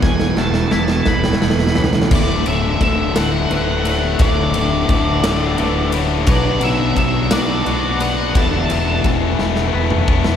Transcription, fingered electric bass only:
\new Staff \with { instrumentName = "Fingered electric bass" } { \clef bass \time 6/8 \key d \major \tempo 4. = 58 e,,8 e,,8 e,,8 d,,8 e,,8 cis,8 | d,,8 d,,8 d,,8 d,,8 d,,4 | d,,8 d,,8 d,,8 d,,8 d,,4 | b,,8 b,,8 b,,8 b,,8 b,,4 |
e,,8 e,,8 e,,8 e,,8 e,,4 | }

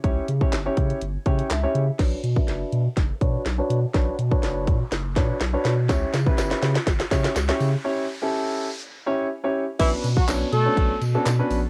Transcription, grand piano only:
\new Staff \with { instrumentName = "Grand piano" } { \time 4/4 \key b \minor \tempo 4 = 123 << { r2 r8 g''8 e''4 | r1 | r1 | r1 |
r1 | r1 | } \\ { <cis' e' g' cis''>8 r16 <cis' e' g' cis''>16 r16 <cis' e' g' cis''>8. r8 <cis' e' g' cis''>8 r16 <cis' e' g' cis''>8 r16 | <d' fis' b' cis''>8 r16 <d' fis' b' e''>4 r8. <d' fis' b' cis''>8 r16 <d' fis' b' cis''>8 r16 | <d' fis' b' cis''>8 r16 <d' fis' b' cis''>4 r8. <d' fis' b' cis''>8 r16 <d' fis' b' cis''>8 r16 | <cis' e' g' cis''>8 r16 <cis' e' g' b'>4 r8. <cis' e' g' cis''>8 r16 <cis' e' g' cis''>8 r16 |
<cis' e' g' cis''>8 r16 <cis' e' g' a'>4 r8. <cis' e' g' cis''>8 r16 <cis' e' g' cis''>8 r16 | <b cis' d' fis' b'>8 r8 <b cis' d' fis' cis''>8 r16 <b cis' d' fis' cis''>8 r8 <b cis' d' fis' a'>16 r16 <b cis' d' fis' b'>8 r16 | } >> }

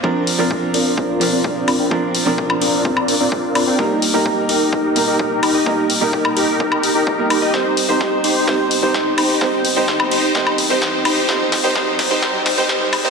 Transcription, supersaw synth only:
\new Staff \with { instrumentName = "Supersaw synth" } { \time 4/4 \key bes \major \tempo 4 = 128 <c' d' f' bes' d''>8 r16 <c' d' f' bes' d''>16 f'8 <c' d' f' bes' d''>8 <c' d'>16 <c' d' f' bes' d''>8 <c' d' f' bes' d''>16 <d' f' d''>8 <c' d' f' bes' d''>16 <c' d' f' bes' g''>16 | f'8 r16 <c' d' f' bes' d''>16 <c' d' f' bes' d''>8 <c' d' f' bes' d''>8 <c' d' f' c''>16 <c' d' f' bes' d''>8 <c' d' f' bes' d''>16 <c' d' f' bes' d''>8 <c' d' f' bes' d''>16 <c' d' f' bes' g''>16 | g'8 r16 <ees' g' bes'>16 <ees' g' bes'>8 <ees' g' bes'>8 <ees' g' bes'>16 <ees' g' bes'>8 <ees' g' bes'>16 <ees' g' bes'>8 <ees' g' bes'>16 <ees' g' ees''>16 | <ees' g' bes'>8 r16 <ees' g' bes'>16 <ees' g' bes'>8 <ees' g' bes'>8 <ees' g' bes'>16 <ees' g' bes'>8 <ees' g' bes'>16 <ees' g' bes'>8 <ees' g' bes'>16 <ees' g' ees''>16 |
<ees' g' c''>8 r16 <ees' g' c''>16 <ees' g' c''>8 <ees' g' c''>8 <ees' g' c''>8 r16 <ees' g' c''>16 <ees' g' c''>8 <ees' g' c''>8 | <ees' g' c''>8 r16 <ees' g' c''>16 <ees' g' c''>8 <ees' g' c''>8 <ees' g' c''>8 r16 <ees' g' c''>16 <ees' g' c''>8 <ees' g' c''>8 | ees'8 r16 <ees' g' c''>16 <ees' g' c''>8 r16 <ees' g' c''>16 <ees' g' c''>8 r16 <ees' g' c''>16 <ees' g' c''>8 r16 <ees' g' c''>16 | }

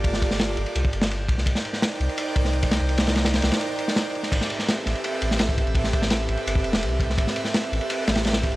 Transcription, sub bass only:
\new Staff \with { instrumentName = "Sub bass" } { \clef bass \time 4/4 \key c \mixolydian \tempo 4 = 168 g,,4. g,,16 r16 c,16 r16 g,,4 c,8 | c,16 r4 r16 c,16 r8. c,4~ c,16 c,16~ | c,4. c,16 r2 r16 | a,,16 r4 r16 a,,16 r8. a,,4~ a,,16 a,,16~ |
a,,4. a,,16 r16 g,,8 e,,16 e,,16 c,4 | a,,16 r4 r16 a,,16 r8. a,,4~ a,,16 g,,16 | }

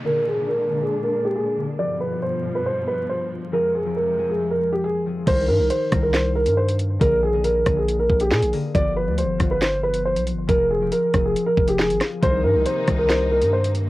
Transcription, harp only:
\new Staff \with { instrumentName = "Harp" } { \time 4/4 \key c \minor \tempo 4 = 138 <d bes aes'>8 r16 <d bes aes'>8 r16 <d bes aes'>4~ <d bes aes'>16 r8. <d bes aes'>16 r16 | <f b g'>4 r8 <f b f'>4~ <f b f'>16 r4 r16 | <f c' aes'>8 r16 <f c' g'>8 r16 <f c' aes'>4~ <f c' aes'>16 r8. <f c' aes'>16 r16 | <ees c' bes'>4 r8 <ees c' bes'>4~ <ees c' bes'>16 r4 r16 |
<d bes aes'>8 r16 <d bes aes'>8 r16 <d bes aes'>4~ <d bes aes'>16 r8. <d bes aes'>16 r16 | <f b g'>4 r8 <f b f'>4~ <f b f'>16 r4 r16 | <f c' aes'>8 r16 <f c' g'>8 r16 <f c' aes'>4~ <f c' aes'>16 r8. <f c' aes'>16 r16 | <ees c' bes'>4 r8 <ees c' bes'>4~ <ees c' bes'>16 r4 r16 | }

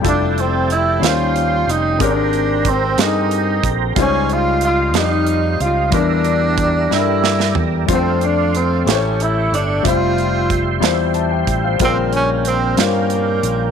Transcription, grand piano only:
<<
  \new Staff \with { instrumentName = "Grand piano" } { \time 6/8 \key f \major \tempo 4. = 61 << { r2. | r2. | r2. | r2. |
r2. | r2 <e'' a''>16 <d'' g''>8 <c'' f''>16~ | <c'' f''>16 r2 r8. | } \\ { <g e' f' a'>4 r8 <g des' f' c''>4 r8 | <aes c' g' bes'>4 r8 <c' g' aes' a' bes'>4 r8 | <g ees' f' c''>4 r8 <g ees' f' g'>4 r8 | <g d' e' bes'>4 r8 <g d' e' a' bes'>4 r8 |
<g a d' f' c''>4 r8 <a e' g' c'' cis''>4 r8 | <g f' c'' e''>4 r8 <g e' f' c''>4 r8 | <des g f' bes'>4 r8 <g c' des' f' c''>4 r8 | } >> }
  \new Staff \with { instrumentName = "Grand piano" } { \clef bass \time 6/8 \key f \major r4. ees4. | aes,4. r4. | des4. r4. | e4. r4. |
r4. a,4. | r2. | bes,4. r4. | }
>>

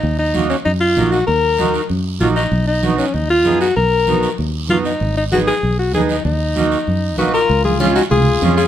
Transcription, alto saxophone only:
\new Staff \with { instrumentName = "Alto saxophone" } { \time 4/4 \key ees \minor \tempo 4 = 193 ees'8 ees'4 des'8 ees'8 f'4 ges'8 | bes'2 r4 f'8 ees'8~ | ees'8 dis'4 des'8 dis'8 f'4 fis'8 | bes'2 r4 f'8 dis'8~ |
dis'8 ees'8 ges'8 aes'4 ges'8 aes'8 ees'8 | ees'2. ces''8 bes'8~ | bes'8 aes'8 f'8 ges'8 aes'4. aes'8 | }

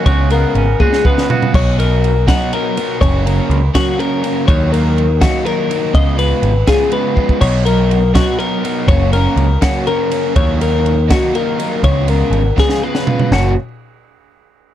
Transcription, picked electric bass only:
\new Staff \with { instrumentName = "Picked electric bass" } { \clef bass \time 6/8 \key fis \major \tempo 4. = 81 cis,4 gis,,8 r4. | b,,2 r4 | fis,,4 cis,8 r4. | dis,2 r4 |
cis,4 gis,,8 r4. | b,,2 r4 | fis,,4 cis,8 r4. | dis,2 r4 |
cis,4 gis,,8 r4. | fis,,8 r2 r8 | }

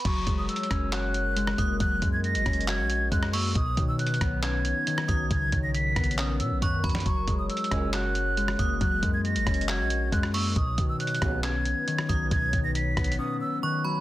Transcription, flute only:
\new Staff \with { instrumentName = "Flute" } { \time 4/4 \key b \major \tempo 4 = 137 cis'''8. dis'''16 e'''4 fis'''2 | fis'''8. gis'''16 ais'''4 gis'''4 fis'''8 e'''8 | dis'''8. e'''16 fis'''4 gis'''2 | gis'''8. ais'''16 b'''4 dis'''8 e'''8 fis'''8 r8 |
cis'''8. dis'''16 e'''4 fis'''2 | fis'''8. gis'''16 ais'''4 gis'''4 fis'''8 e'''8 | dis'''8. e'''16 fis'''4 gis'''2 | gis'''8. ais'''16 b'''4 dis'''8 e'''8 fis'''8 r8 | }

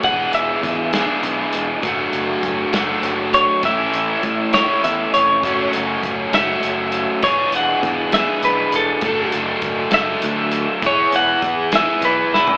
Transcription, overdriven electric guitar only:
\new Staff \with { instrumentName = "Overdriven electric guitar" } { \time 6/8 \key e \mixolydian \tempo 4. = 67 <e b d' gis'>4. <e b d' gis'>4. | <fis a d' fis'>4. <fis a d' fis'>4. | <a, e a cis' e'>4. <a, e a cis' e'>4. | <fis a cis' fis'>4. <fis a cis' fis'>4. |
<e b d' gis'>4. <e b d' gis'>4. | <fis a d' a'>4. <fis a d' a'>4. | <e b e' gis'>4. <e b e' gis'>4. | }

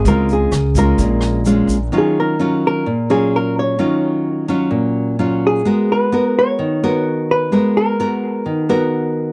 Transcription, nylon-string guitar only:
\new Staff \with { instrumentName = "Nylon-string guitar" } { \time 4/4 \key bes \minor \tempo 4 = 129 << { <aes c' f'>4 r8 <aes des' f'>4. <aes des' f'>8 r8 | \key ees \minor <ges des' f'>4 <ges des' f'>4 r8 <ges des' f'>4. | <ges des' f'>4. <ges des' f'>4. <ges des' f'>4 | <ces' ges' bes'>4 <ces' ges' bes'>4. <ces' ges' bes'>4. |
<ces' ges' bes'>4 <ces' ges' bes'>4. <ces' ges' bes'>4. | } \\ { des2 bes,2 | ees2 bes,2 | ees2 bes,2 | aes2 ees2 |
aes2 ees2 | } >> }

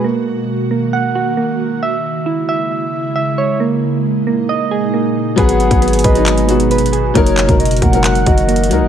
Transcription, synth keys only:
\new Staff \with { instrumentName = "Synth keys" } { \time 4/4 \key fis \mixolydian \tempo 4 = 135 ais4. ais8 fis''8 fis'8 ais4 | e''4 e'8 e''4. e''8 cis''8 | ais4. ais8 dis''8 gis'8 ais4 | b'4 b8 b'4. b'8 gis'8 |
ais4. ais8 fis''8 fis'8 ais4 | }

